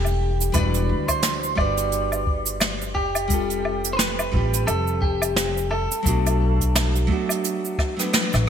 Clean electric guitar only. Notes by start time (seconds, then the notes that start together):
Already playing: G4
0.54 B4
1.08 C5
1.57 D5
2.95 G4
3.93 B4 C5
4.67 A4
5.02 G4
5.71 A4